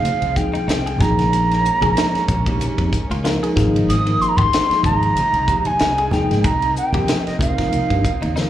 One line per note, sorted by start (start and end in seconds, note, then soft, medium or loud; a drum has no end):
0.00 0.97 F3 medium
0.00 0.97 G#3 medium
0.00 0.98 C4 medium
0.00 0.98 D#4 medium
0.00 0.98 F4 medium
0.00 0.37 F5 medium
0.00 high conga medium
0.05 hi-hat pedal medium
0.05 ride medium
0.22 0.34 C2 medium
0.22 ride medium
0.36 0.78 F3 medium
0.36 0.78 A#3 medium
0.36 0.78 D#4 medium
0.36 0.78 G#4 medium
0.36 1.02 G5 medium
0.36 kick medium
0.36 hi-hat pedal medium
0.53 0.61 D#4 medium
0.53 muted fingered electric bass stroke soft
0.53 ride soft
0.53 high conga medium
0.68 0.95 C2 medium
0.68 0.77 D#4 medium
0.68 snare loud
0.68 hi-hat pedal medium
0.68 ride medium
0.86 1.03 G#4 medium
0.86 ride medium
0.98 1.69 A#1 medium
0.98 1.64 F3 medium
0.98 6.40 G#3 medium
0.98 3.54 A#3 medium
0.98 1.64 A#3 medium
0.98 3.54 C#4 medium
0.98 1.64 D#4 medium
0.98 1.65 G#4 medium
0.98 2.92 A#5 medium
0.98 kick medium
0.98 hi-hat pedal medium
0.98 low conga medium
1.02 snare soft
1.18 snare soft
1.18 ride medium
1.18 high conga medium
1.33 hi-hat pedal medium
1.33 ride medium
1.51 snare soft
1.51 ride medium
1.65 hi-hat pedal medium
1.81 1.94 A#1 medium
1.81 2.21 F3 medium
1.81 2.21 A#3 medium
1.81 2.22 D#4 medium
1.81 2.21 G#4 medium
1.81 1.99 G#4 medium
1.81 kick medium
1.81 ride medium
1.81 high conga medium
1.81 low conga medium
1.97 snare loud
1.97 hi-hat pedal medium
1.97 ride medium
2.14 muted fingered electric bass stroke soft
2.14 snare soft
2.14 ride medium
2.28 2.70 A#1 medium
2.28 kick medium
2.28 hi-hat pedal medium
2.46 2.96 F3 medium
2.46 2.96 A#3 medium
2.46 2.96 D#4 medium
2.46 2.96 G4 medium
2.46 kick medium
2.46 ride soft
2.60 hi-hat pedal medium
2.60 ride medium
2.60 high conga medium
2.78 2.90 F2 medium
2.78 kick medium
2.78 ride soft
2.93 kick medium
2.93 hi-hat pedal medium
3.10 3.37 C#2 medium
3.10 3.18 F4 medium
3.10 ride medium
3.10 high conga medium
3.24 3.54 F3 medium
3.24 3.55 A#3 medium
3.24 3.55 D#4 medium
3.24 3.34 F4 medium
3.24 3.56 A#4 medium
3.24 3.54 A#5 medium
3.24 snare medium
3.24 hi-hat pedal medium
3.24 ride medium
3.43 3.59 G#4 medium
3.43 ride medium
3.56 3.83 G#1 medium
3.56 3.95 F3 medium
3.56 6.41 F3 medium
3.56 3.95 A#3 medium
3.56 3.95 D#4 medium
3.56 8.50 D#4 medium
3.56 3.95 G#4 medium
3.56 3.86 F5 medium
3.56 kick loud
3.56 snare soft
3.56 hi-hat pedal medium
3.56 low conga medium
3.74 ride medium
3.74 high conga medium
3.88 4.15 G#1 medium
3.88 4.22 D#6 medium
3.88 hi-hat pedal medium
3.88 ride medium
4.06 4.46 F3 medium
4.06 4.46 A#3 medium
4.06 4.46 D#4 medium
4.06 4.46 A#4 medium
4.06 ride medium
4.21 4.30 C6 loud
4.21 hi-hat pedal medium
4.28 4.38 A#5 medium
4.36 4.50 G#1 medium
4.36 4.55 G4 medium
4.36 4.84 C6 loud
4.36 kick medium
4.36 ride medium
4.36 high conga medium
4.36 low conga medium
4.53 snare loud
4.53 hi-hat pedal medium
4.53 ride medium
4.70 5.19 F3 medium
4.70 5.19 A#3 medium
4.70 5.19 D#4 medium
4.70 5.19 G#4 medium
4.70 muted fingered electric bass stroke soft
4.70 snare soft
4.70 ride medium
4.83 5.11 G#1 medium
4.83 5.67 A#5 loud
4.83 kick medium
4.83 hi-hat pedal medium
4.83 high conga medium
4.83 low conga medium
5.03 ride soft
5.15 hi-hat pedal medium
5.15 ride medium
5.15 high conga medium
5.33 5.46 C2 medium
5.33 ride medium
5.48 5.90 F3 medium
5.48 5.91 A#3 medium
5.48 5.90 D#4 medium
5.48 5.90 G4 medium
5.48 kick medium
5.48 hi-hat pedal medium
5.65 5.74 D#4 medium
5.65 6.13 G#5 medium
5.65 muted fingered electric bass stroke soft
5.65 ride medium
5.65 high conga medium
5.79 6.23 C2 medium
5.79 5.90 D#4 medium
5.79 snare loud
5.79 hi-hat pedal medium
5.79 ride medium
5.98 6.15 G#4 medium
5.98 ride medium
6.11 6.44 F3 medium
6.11 6.45 A#3 medium
6.11 6.44 D#4 medium
6.11 6.45 G#4 medium
6.11 6.46 G5 medium
6.11 snare soft
6.11 hi-hat pedal medium
6.11 low conga medium
6.29 6.42 G#2 medium
6.29 snare soft
6.29 ride soft
6.29 high conga medium
6.44 6.71 C2 loud
6.44 8.50 C3 medium
6.44 8.50 C4 medium
6.44 8.50 A#4 medium
6.44 6.76 A#5 medium
6.44 kick loud
6.44 hi-hat pedal medium
6.44 ride medium
6.62 ride medium
6.76 7.23 G5 medium
6.76 hi-hat pedal medium
6.93 7.06 C2 medium
6.93 7.33 F3 medium
6.93 7.34 A#3 medium
6.93 7.34 D#4 medium
6.93 7.11 G4 medium
6.93 7.34 G4 medium
6.93 kick medium
6.93 ride medium
6.93 high conga medium
6.93 low conga medium
7.08 snare loud
7.08 hi-hat pedal medium
7.08 ride medium
7.26 7.39 D#5 medium
7.26 muted fingered electric bass stroke soft
7.26 snare soft
7.26 ride soft
7.39 7.82 C2 medium
7.39 8.50 F5 medium
7.39 kick medium
7.39 hi-hat pedal medium
7.39 high conga medium
7.39 low conga medium
7.58 8.07 F3 medium
7.58 8.07 A#3 medium
7.58 8.07 D#4 medium
7.58 8.07 F4 medium
7.58 kick medium
7.58 snare soft
7.58 ride medium
7.71 hi-hat pedal medium
7.71 ride medium
7.71 high conga medium
7.90 8.02 G2 medium
7.90 kick medium
7.90 ride soft
8.04 kick medium
8.04 hi-hat pedal medium
8.21 8.50 D#2 medium
8.21 8.30 D#4 medium
8.21 ride medium
8.21 high conga soft
8.36 8.50 F3 medium
8.36 8.50 A#3 medium
8.36 8.45 D#4 medium
8.36 8.50 D#4 medium
8.36 8.50 A#4 medium
8.36 snare medium
8.36 hi-hat pedal medium
8.36 high conga medium